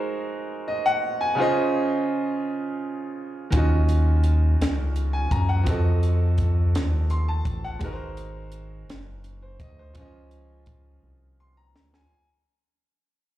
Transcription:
0.00 1.33 G#3 medium
0.00 1.34 D#4 medium
0.00 1.35 F#4 medium
0.00 1.36 A#4 medium
0.00 1.37 C5 medium
0.68 0.84 D#5 medium
0.86 1.19 F#5 medium
1.21 1.55 G#5 medium
1.35 3.47 C#3 medium
1.35 3.48 C#4 medium
1.35 3.49 F4 medium
1.40 3.50 C5 medium
1.40 3.50 D#5 medium
3.50 4.56 D#2 loud
3.50 5.62 D#3 medium
3.50 5.63 C#4 medium
3.50 5.64 F4 medium
3.50 kick loud
3.50 closed hi-hat medium
3.56 5.65 F#4 medium
3.56 5.65 D#5 medium
3.89 closed hi-hat medium
4.24 closed hi-hat medium
4.61 5.28 C#2 medium
4.61 snare loud
4.61 closed hi-hat medium
4.96 closed hi-hat soft
5.13 5.30 G#5 medium
5.31 5.64 F#2 medium
5.31 5.48 A#5 medium
5.31 kick medium
5.31 closed hi-hat soft
5.49 5.83 F#5 medium
5.63 6.77 F2 loud
5.63 7.76 F3 medium
5.63 7.76 C4 medium
5.63 7.77 F#4 medium
5.63 kick loud
5.63 closed hi-hat medium
5.69 7.78 A4 medium
5.69 7.79 D#5 medium
6.03 closed hi-hat medium
6.38 kick medium
6.38 closed hi-hat medium
6.75 7.42 D#2 medium
6.75 snare loud
6.75 closed hi-hat medium
7.10 7.27 C6 medium
7.10 closed hi-hat medium
7.28 7.62 A5 medium
7.45 7.78 A1 medium
7.45 kick loud
7.45 closed hi-hat medium
7.64 7.98 F#5 medium
7.79 8.85 G#1 loud
7.79 9.91 G#3 medium
7.79 9.92 D#4 medium
7.79 9.92 F#4 medium
7.79 kick loud
7.79 closed hi-hat medium
7.84 9.93 A#4 medium
7.84 7.90 B4 medium
7.93 9.27 C5 medium
8.17 closed hi-hat medium
8.52 closed hi-hat medium
8.89 9.62 F#1 loud
8.89 snare loud
8.89 closed hi-hat medium
9.24 closed hi-hat medium
9.42 9.59 C5 medium
9.60 9.92 D2 loud
9.60 9.77 D#5 medium
9.60 kick medium
9.60 closed hi-hat soft
9.79 9.98 C5 medium
9.94 10.99 C#2 loud
9.94 12.05 F3 medium
9.94 12.06 C#4 medium
9.94 12.07 F4 medium
9.94 kick loud
9.94 closed hi-hat medium
9.99 12.08 C5 medium
9.99 12.09 D#5 medium
10.31 closed hi-hat soft
10.66 kick medium
10.66 closed hi-hat medium
11.03 11.77 C2 medium
11.40 11.56 C6 medium
11.57 11.91 A#5 medium
11.75 12.07 D2 loud
11.75 snare loud
11.94 12.27 G#5 medium
11.94 snare loud

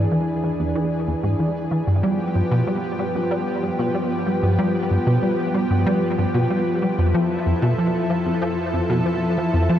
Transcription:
0.00 1.84 E2 medium
0.00 1.83 E3 medium
0.00 1.84 D4 medium
0.00 1.83 G#4 medium
0.00 9.79 B4 medium
0.12 0.23 E3 medium
0.44 0.55 E3 medium
0.60 0.75 E2 medium
0.75 0.91 E3 loud
1.07 1.14 E2 medium
1.23 1.35 G#2 medium
1.39 1.51 E3 medium
1.71 1.83 E3 medium
1.87 2.02 G2 medium
1.87 6.95 G2 medium
1.87 9.79 F3 medium
1.87 6.94 B3 medium
1.87 6.94 G4 medium
2.03 2.18 G3 medium
2.35 2.42 G2 medium
2.51 2.63 B2 loud
2.67 2.79 G3 medium
2.99 3.10 G3 medium
3.15 3.30 G2 medium
3.31 3.46 G3 loud
3.63 3.70 G2 medium
3.79 3.90 B2 medium
3.95 4.06 G3 medium
4.26 4.38 G3 medium
4.43 4.58 G2 medium
4.59 4.74 G3 medium
4.91 4.97 G2 medium
5.07 5.18 B2 loud
5.23 5.34 G3 medium
5.54 5.66 G3 medium
5.70 5.85 G2 medium
5.86 6.01 G3 loud
6.18 6.25 G2 medium
6.34 6.46 B2 medium
6.50 6.62 G3 medium
6.82 6.94 G3 medium
6.98 9.79 F2 medium
6.98 7.13 F2 medium
6.98 9.79 E4 medium
6.98 9.79 A4 medium
7.14 7.29 F3 loud
7.46 7.53 F2 medium
7.62 7.73 B2 loud
7.78 7.89 F3 medium
8.10 8.21 F3 medium
8.26 8.41 F2 medium
8.42 8.57 F3 loud
8.73 8.80 F2 medium
8.89 9.01 B2 loud
9.06 9.17 F3 medium
9.38 9.49 F3 medium
9.53 9.69 F2 medium
9.69 9.79 F3 medium

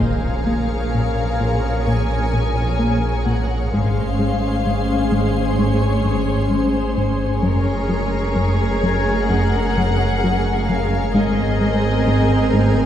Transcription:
0.00 3.68 A#1 soft
0.00 3.71 A#1 medium
0.00 0.28 A#2 medium
0.00 3.68 A#2 soft
0.00 3.68 F3 soft
0.00 3.67 C#4 soft
0.00 3.68 G#4 soft
0.00 3.68 A#4 soft
0.00 3.68 C#5 soft
0.00 1.86 F5 soft
0.00 impact soft
0.46 0.75 A#3 soft
0.94 1.22 A#2 soft
1.40 1.68 A#2 soft
1.40 4.15 C6 soft
1.85 2.15 A#2 medium
1.85 3.25 G#5 soft
2.33 2.61 A#2 soft
2.79 3.07 A#3 soft
3.25 3.54 A#2 soft
3.25 3.72 F#5 soft
3.70 7.43 G#1 medium
3.70 7.42 G#1 soft
3.70 7.42 G#2 soft
3.70 4.01 G#2 medium
3.70 7.38 G#3 soft
3.70 7.38 C#4 soft
3.70 7.38 G#4 soft
3.70 7.38 C5 soft
3.70 5.57 F5 soft
3.70 7.42 C6 soft
4.19 4.47 G#3 soft
4.66 4.94 G#2 soft
5.12 5.39 G#2 soft
5.56 5.86 G#2 medium
5.56 6.47 C#5 soft
6.05 6.32 G#2 soft
6.48 6.78 G#3 soft
6.48 7.42 C5 soft
6.97 7.25 G#2 soft
7.41 11.15 F#1 medium
7.41 11.10 F#1 soft
7.41 11.10 F#2 soft
7.41 7.70 F#2 medium
7.41 11.10 G#3 soft
7.41 11.10 C#4 soft
7.41 11.10 G#4 soft
7.41 11.13 A#4 soft
7.41 11.10 A#4 soft
7.41 11.10 C#5 soft
7.41 9.26 C#5 soft
7.41 12.86 G#6 soft
7.41 12.86 C7 soft
7.89 8.17 F#3 soft
8.36 8.64 F#2 soft
8.83 9.11 F#2 soft
8.83 11.57 G#5 soft
8.83 11.57 G#6 soft
9.29 9.58 F#2 medium
9.29 10.68 F#5 medium
9.77 10.05 F#2 soft
10.24 10.51 F#3 soft
10.67 10.97 F#2 soft
10.67 11.14 F5 soft
11.13 12.86 G#1 soft
11.13 12.86 G#1 medium
11.13 12.86 G#2 soft
11.13 11.42 G#2 medium
11.13 12.86 G#3 soft
11.13 12.86 C4 soft
11.13 12.86 G#4 soft
11.13 12.86 A#4 soft
11.13 12.86 C5 soft
11.13 12.86 D#5 medium
11.61 11.88 G#3 soft
12.07 12.34 G#2 soft
12.54 12.81 G#2 soft

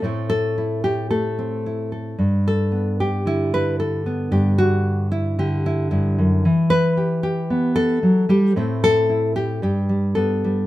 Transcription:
0.02 2.14 A2 medium
0.02 1.10 A3 soft
0.02 1.37 C4 soft
0.02 0.57 E4 soft
0.02 0.29 A4 soft
0.30 0.83 A4 loud
0.58 1.65 E4 soft
0.84 1.10 G4 medium
1.10 2.22 A3 medium
1.10 1.91 A4 medium
1.39 2.16 C4 soft
1.66 2.16 E4 soft
1.92 2.22 A4 soft
2.19 4.30 G2 medium
2.48 3.00 A4 medium
2.72 3.27 B3 soft
3.00 3.53 G4 medium
3.25 5.37 D3 medium
3.25 4.06 E4 medium
3.54 3.79 B4 loud
3.80 4.31 A4 medium
4.06 4.58 B3 soft
4.31 5.91 G2 medium
4.31 5.11 G4 medium
4.58 5.11 F#4 loud
5.12 5.65 E4 medium
5.39 6.44 D3 medium
5.39 6.18 G4 medium
5.66 5.90 E4 medium
5.91 6.18 G2 medium
5.91 6.44 E4 medium
6.18 6.45 F#2 medium
6.45 8.53 E3 medium
6.70 7.75 B4 loud
6.97 7.22 G4 soft
7.23 8.03 G4 medium
7.50 8.02 B3 medium
7.76 8.56 A4 loud
8.03 8.29 F#3 medium
8.29 8.56 G3 medium
8.29 8.56 G4 medium
8.56 9.59 A2 medium
8.56 9.59 A3 soft
8.56 9.60 C4 soft
8.56 9.08 E4 soft
8.56 8.82 A4 soft
8.84 9.35 A4 loud
9.09 9.59 E4 soft
9.36 9.62 G4 medium
9.62 10.67 G2 medium
9.62 10.15 G4 medium
9.89 10.43 G3 soft
10.15 10.67 B3 soft
10.15 10.67 A4 medium
10.44 10.67 G3 soft

